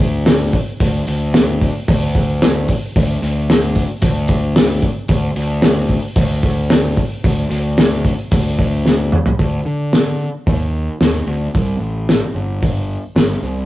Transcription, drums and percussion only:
0.00 kick medium
0.26 snare loud
0.26 open hi-hat medium
0.53 kick medium
0.53 open hi-hat medium
0.80 kick loud
0.80 open hi-hat medium
1.07 open hi-hat medium
1.34 snare loud
1.34 open hi-hat medium
1.61 kick medium
1.61 open hi-hat medium
1.88 kick loud
1.88 open hi-hat medium
2.15 kick medium
2.15 open hi-hat medium
2.42 snare loud
2.42 open hi-hat medium
2.68 kick medium
2.68 open hi-hat medium
2.96 kick loud
2.96 open hi-hat medium
3.23 open hi-hat medium
3.50 snare loud
3.50 open hi-hat medium
3.76 kick medium
3.76 open hi-hat medium
4.02 kick loud
4.02 open hi-hat medium
4.28 kick medium
4.28 open hi-hat medium
4.56 snare loud
4.56 open hi-hat medium
4.82 kick medium
4.82 open hi-hat medium
5.08 kick loud
5.08 open hi-hat medium
5.36 open hi-hat medium
5.62 snare loud
5.62 open hi-hat medium
5.89 kick medium
5.89 open hi-hat medium
6.16 kick loud
6.16 open hi-hat medium
6.43 kick medium
6.43 open hi-hat medium
6.70 snare loud
6.70 open hi-hat medium
6.97 kick medium
6.97 open hi-hat medium
7.24 kick loud
7.24 open hi-hat medium
7.52 open hi-hat medium
7.78 snare loud
7.78 open hi-hat medium
8.04 kick medium
8.04 open hi-hat medium
8.31 kick loud
8.31 open hi-hat medium
8.59 kick medium
8.59 open hi-hat medium
8.86 snare medium
9.12 mid tom medium
9.26 floor tom medium
9.39 kick medium
9.39 open hi-hat soft
9.93 snare loud
9.93 open hi-hat soft
10.47 kick loud
10.47 open hi-hat soft
11.01 snare medium
11.01 open hi-hat soft
11.55 kick loud
11.55 open hi-hat soft
12.09 snare loud
12.09 open hi-hat soft
12.62 kick loud
12.62 open hi-hat medium
13.16 snare loud
13.16 open hi-hat soft

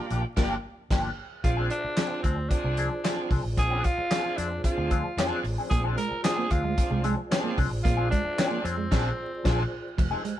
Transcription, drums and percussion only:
0.10 closed hi-hat medium
0.37 kick loud
0.37 snare loud
0.37 crash medium
0.91 kick loud
0.91 snare medium
0.91 crash medium
1.44 kick medium
1.44 closed hi-hat medium
1.70 closed hi-hat medium
1.97 snare loud
1.97 clap medium
1.97 closed hi-hat medium
2.24 kick medium
2.24 closed hi-hat medium
2.51 kick medium
2.51 closed hi-hat loud
2.77 closed hi-hat medium
3.04 snare medium
3.04 clap medium
3.04 closed hi-hat medium
3.31 kick medium
3.31 open hi-hat medium
3.57 kick loud
3.57 closed hi-hat loud
3.84 kick medium
3.84 closed hi-hat medium
4.11 snare loud
4.11 clap medium
4.11 closed hi-hat medium
4.38 closed hi-hat medium
4.64 kick medium
4.64 closed hi-hat loud
4.91 kick medium
4.91 closed hi-hat medium
5.18 snare medium
5.18 clap medium
5.18 closed hi-hat medium
5.44 open hi-hat medium
5.71 kick loud
5.71 closed hi-hat medium
5.98 closed hi-hat medium
6.24 snare loud
6.24 clap medium
6.24 closed hi-hat medium
6.51 kick medium
6.51 closed hi-hat medium
6.78 kick loud
6.78 closed hi-hat medium
7.04 closed hi-hat medium
7.32 snare loud
7.32 clap medium
7.32 closed hi-hat medium
7.58 kick medium
7.58 open hi-hat medium
7.85 kick loud
7.85 closed hi-hat medium
8.12 kick medium
8.12 closed hi-hat medium
8.39 snare loud
8.39 clap medium
8.39 closed hi-hat medium
8.65 closed hi-hat medium
8.92 kick loud
8.92 snare loud
8.92 crash medium
9.45 kick loud
9.45 snare loud
9.45 crash medium
9.98 kick loud
9.98 crash medium
10.25 closed hi-hat medium

